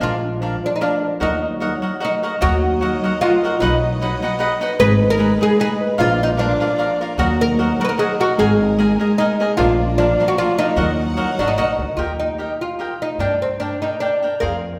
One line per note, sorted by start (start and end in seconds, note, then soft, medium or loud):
0.00 0.53 A#1 loud
0.00 0.39 F3 medium
0.00 0.14 D4 medium
0.00 0.29 D#4 medium
0.00 0.39 F4 medium
0.00 1.02 A#4 medium
0.00 0.14 A#4 medium
0.00 0.14 D5 medium
0.00 0.29 D#5 medium
0.00 0.14 F5 medium
0.23 1.48 D4 medium
0.40 0.62 F3 medium
0.40 0.54 D4 medium
0.40 0.54 A#4 medium
0.40 0.55 D5 medium
0.40 0.55 F5 medium
0.63 1.26 F3 medium
0.63 0.70 D4 medium
0.76 0.81 D#4 medium
0.81 0.94 D4 medium
0.81 1.18 D4 medium
0.81 0.94 A#4 medium
0.81 1.48 D5 medium
0.81 0.95 D5 medium
0.81 0.94 F5 medium
1.02 2.22 A#4 medium
1.20 1.73 D#2 medium
1.20 1.59 F#3 medium
1.20 1.98 D#4 medium
1.20 1.34 F#4 medium
1.20 1.34 A#4 medium
1.20 1.34 D#5 medium
1.20 1.34 F#5 medium
1.42 2.62 D#4 medium
1.60 1.81 F#3 medium
1.60 1.74 F#4 medium
1.60 1.74 A#4 medium
1.60 1.74 D#5 medium
1.60 1.75 F#5 medium
1.82 2.40 F#3 medium
1.82 1.93 F#4 soft
1.82 1.93 A#4 soft
1.82 1.94 D#5 soft
1.82 1.94 F#5 medium
2.00 2.14 F#4 medium
2.00 2.14 A#4 medium
2.00 3.21 D#5 medium
2.00 2.15 D#5 medium
2.00 2.15 F#5 medium
2.05 2.41 D#4 medium
2.22 2.34 F#4 medium
2.22 3.42 A#4 medium
2.22 2.34 A#4 medium
2.22 2.35 D#5 medium
2.22 2.35 F#5 medium
2.41 2.94 D#2 loud
2.41 2.80 F#3 medium
2.41 3.62 D#4 medium
2.41 2.54 F#4 medium
2.41 3.21 F#4 loud
2.41 2.55 A#4 medium
2.41 2.55 D#5 medium
2.41 2.55 F#5 medium
2.45 3.62 A#4 medium
2.45 3.60 D#5 medium
2.63 3.83 D#4 medium
2.81 3.01 F#3 medium
2.81 2.94 F#4 medium
2.81 2.95 A#4 soft
2.81 2.95 D#5 medium
2.81 2.95 F#5 medium
3.03 3.60 F#3 medium
3.03 3.14 F#4 medium
3.03 3.15 A#4 medium
3.03 3.15 D#5 medium
3.03 3.15 F#5 medium
3.21 3.60 F4 loud
3.21 3.35 F#4 medium
3.21 3.35 A#4 medium
3.21 4.40 D#5 medium
3.21 3.35 D#5 medium
3.21 3.35 F#5 medium
3.43 3.54 F#4 medium
3.43 4.69 A#4 medium
3.43 3.55 A#4 medium
3.43 3.55 D#5 medium
3.43 3.55 F#5 medium
3.60 4.13 B1 loud
3.60 4.01 F#3 medium
3.60 4.78 B3 medium
3.60 4.18 D#4 medium
3.60 3.75 D#4 medium
3.60 4.78 F#4 medium
3.60 3.75 B4 medium
3.60 4.79 D#5 medium
3.60 3.75 D#5 medium
3.60 3.75 F#5 medium
3.83 5.02 D#4 medium
4.01 4.22 F#3 medium
4.01 4.14 D#4 medium
4.01 4.15 B4 medium
4.01 4.15 D#5 medium
4.01 4.15 F#5 medium
4.22 4.85 F#3 medium
4.22 4.33 D#4 medium
4.22 4.34 B4 soft
4.22 4.34 D#5 medium
4.22 4.34 F#5 medium
4.39 4.53 D#4 medium
4.39 4.53 B4 medium
4.39 5.58 D#5 medium
4.39 4.53 D#5 medium
4.39 4.54 F#5 medium
4.61 4.72 D#4 medium
4.61 4.72 B4 medium
4.61 5.80 B4 medium
4.61 4.73 D#5 medium
4.61 4.73 F#5 medium
4.78 5.31 G#1 loud
4.78 5.97 G#3 medium
4.78 5.18 G#3 medium
4.78 5.97 D#4 medium
4.78 4.93 D#4 medium
4.78 4.93 G#4 medium
4.78 5.97 B4 medium
4.78 5.10 B4 loud
4.78 4.93 B4 medium
4.78 4.93 D#5 medium
5.02 6.25 D#4 medium
5.10 5.42 A#4 loud
5.18 5.40 G#3 medium
5.18 5.32 D#4 medium
5.18 5.32 G#4 medium
5.18 5.33 B4 medium
5.18 5.33 D#5 medium
5.41 6.04 G#3 medium
5.41 5.52 D#4 soft
5.41 5.52 G#4 medium
5.41 5.59 G#4 medium
5.41 5.52 B4 soft
5.41 5.52 D#5 medium
5.59 5.73 D#4 medium
5.59 5.73 G#4 medium
5.59 5.97 G#4 loud
5.59 5.73 B4 medium
5.59 6.25 D#5 medium
5.59 5.73 D#5 medium
5.81 7.06 B4 medium
5.98 6.51 A#1 loud
5.98 6.37 F3 medium
5.98 7.18 A#3 medium
5.98 6.12 F4 medium
5.98 7.18 F4 medium
5.98 6.20 F4 loud
5.98 6.12 A#4 medium
5.98 6.12 D5 medium
5.98 7.18 D5 medium
5.98 6.12 F5 loud
6.19 7.46 D4 medium
6.19 6.28 D#4 medium
6.37 6.59 F3 medium
6.37 6.97 D4 medium
6.37 6.51 F4 medium
6.37 6.52 A#4 medium
6.37 6.52 D5 medium
6.37 6.52 F5 medium
6.60 7.24 F3 medium
6.60 6.71 F4 medium
6.60 6.72 A#4 soft
6.60 6.72 D5 medium
6.60 6.72 F5 soft
6.78 6.92 F4 medium
6.78 6.92 A#4 medium
6.78 7.46 D5 medium
6.78 6.93 D5 medium
6.78 6.92 F5 medium
7.00 7.12 F4 medium
7.00 8.20 A#4 medium
7.00 7.12 A#4 medium
7.00 7.13 D5 medium
7.00 7.12 F5 medium
7.18 7.70 D#2 loud
7.18 7.58 F#3 medium
7.18 9.55 D#4 medium
7.18 7.32 F#4 medium
7.18 7.39 F#4 medium
7.18 9.56 A#4 medium
7.18 7.32 A#4 medium
7.18 7.32 D#5 medium
7.18 8.38 F#5 medium
7.18 7.32 F#5 medium
7.40 8.60 D#4 medium
7.40 7.78 A#4 loud
7.59 7.79 F#3 medium
7.59 7.72 F#4 medium
7.59 7.72 A#4 medium
7.59 7.73 D#5 medium
7.59 7.73 F#5 medium
7.80 8.44 F#3 medium
7.80 7.91 F#4 soft
7.80 7.92 A#4 medium
7.80 7.84 A#4 medium
7.80 7.92 D#5 soft
7.80 7.92 F#5 medium
7.85 7.89 B4 medium
7.89 7.99 A#4 medium
7.98 8.11 F#4 medium
7.98 8.20 G#4 medium
7.98 8.12 A#4 medium
7.98 9.17 D#5 medium
7.98 8.12 D#5 medium
7.98 8.12 F#5 medium
8.20 8.31 F#4 medium
8.20 8.39 F#4 medium
8.20 9.40 A#4 medium
8.20 8.32 A#4 medium
8.20 8.32 D#5 medium
8.20 8.32 F#5 medium
8.37 8.90 G#1 loud
8.37 8.76 G#3 medium
8.37 9.57 G#3 medium
8.37 8.52 G#4 medium
8.37 8.76 G#4 medium
8.37 8.52 A#4 medium
8.37 8.52 D#5 medium
8.37 8.53 G#5 medium
8.60 9.86 D#4 medium
8.78 8.99 G#3 medium
8.78 8.92 G#4 medium
8.78 8.92 A#4 medium
8.78 8.92 D#5 medium
8.78 8.93 G#5 medium
8.99 9.63 G#3 medium
8.99 9.11 G#4 medium
8.99 9.11 A#4 medium
8.99 9.12 D#5 medium
8.99 9.12 G#5 medium
9.18 9.55 D#4 medium
9.18 9.32 G#4 medium
9.18 9.32 A#4 medium
9.18 9.86 D#5 medium
9.18 9.32 D#5 medium
9.18 9.32 G#5 medium
9.40 9.51 G#4 medium
9.40 9.51 A#4 medium
9.40 10.58 A#4 medium
9.40 9.51 D#5 medium
9.40 9.52 G#5 medium
9.57 10.10 A#1 loud
9.57 9.96 F3 medium
9.57 10.75 A#3 medium
9.57 9.71 D4 medium
9.57 9.98 F4 loud
9.57 10.76 F4 medium
9.57 9.71 A#4 medium
9.57 10.75 D5 medium
9.57 9.71 D5 medium
9.57 9.71 F5 medium
9.80 11.05 D4 medium
9.97 10.18 F3 medium
9.97 10.28 D4 medium
9.97 10.11 D4 medium
9.97 10.11 A#4 medium
9.97 10.12 D5 medium
9.97 10.12 F5 medium
10.19 10.82 F3 medium
10.19 10.30 D4 medium
10.19 10.30 A#4 medium
10.19 10.31 D5 medium
10.19 10.31 F5 medium
10.28 10.37 F#4 medium
10.38 10.50 D4 medium
10.38 10.58 F4 loud
10.38 10.51 A#4 medium
10.38 11.05 D5 medium
10.38 10.51 D5 medium
10.38 10.51 F5 medium
10.58 10.70 D4 soft
10.58 11.46 D#4 medium
10.58 11.78 A#4 medium
10.58 10.70 A#4 medium
10.58 10.71 D5 medium
10.58 10.70 F5 medium
10.76 11.17 D#2 loud
10.76 11.16 F#3 medium
10.76 11.96 D#4 medium
10.76 10.90 F#4 medium
10.76 11.96 A#4 medium
10.76 10.90 A#4 medium
10.76 10.90 D#5 medium
10.76 11.96 F#5 medium
10.76 10.90 F#5 medium
10.99 13.69 D#4 medium
11.17 11.37 F#3 medium
11.17 11.30 F#4 medium
11.17 11.30 A#4 medium
11.17 11.30 D#5 medium
11.17 11.31 F#5 medium
11.38 11.55 G#1 medium
11.38 12.03 F#3 medium
11.38 11.48 D4 medium
11.38 11.50 F#4 medium
11.38 11.50 A#4 medium
11.38 11.50 D#5 medium
11.38 11.50 F#5 medium
11.48 11.57 D#4 medium
11.57 11.77 A#1 medium
11.57 11.96 D#4 medium
11.57 11.71 F#4 medium
11.57 11.71 A#4 medium
11.57 13.35 D#5 medium
11.57 11.71 D#5 medium
11.57 11.71 F#5 medium
11.78 11.95 D2 medium
11.78 13.91 A#4 medium
11.97 12.50 D#2 medium
11.97 12.03 F4 medium
11.97 12.11 G4 medium
11.97 12.12 A#4 medium
11.97 12.12 D#5 medium
11.97 12.12 G5 medium
12.20 12.61 D#4 medium
12.38 12.52 G4 soft
12.38 12.52 A#4 soft
12.38 12.53 D#5 soft
12.38 12.53 G5 medium
12.61 13.02 F4 medium
12.79 12.92 G4 soft
12.79 12.93 A#4 medium
12.79 12.93 D#5 soft
12.79 12.93 G5 medium
13.02 13.19 D#4 medium
13.18 13.72 G2 medium
13.18 13.33 D4 medium
13.18 13.42 D4 medium
13.18 13.33 A#4 soft
13.18 13.34 D5 medium
13.18 13.34 G5 medium
13.42 13.47 C4 medium
13.60 13.73 D4 soft
13.60 13.81 D4 medium
13.60 13.74 A#4 soft
13.60 13.74 D5 soft
13.60 13.74 G5 medium
13.82 13.93 D4 soft
13.82 14.00 D#4 medium
13.82 13.94 A#4 soft
13.82 13.94 D5 soft
13.82 13.94 G5 soft
14.00 14.14 D4 soft
14.00 14.30 D4 medium
14.00 14.14 A#4 soft
14.00 14.14 D5 soft
14.00 14.15 G5 medium
14.22 14.34 D4 soft
14.22 14.34 A#4 soft
14.22 14.35 D5 soft
14.22 14.35 G5 soft
14.40 14.79 F2 medium
14.40 14.55 F4 medium
14.40 14.55 G#4 medium
14.40 14.79 A#4 medium
14.40 14.55 C5 medium
14.40 14.55 F5 medium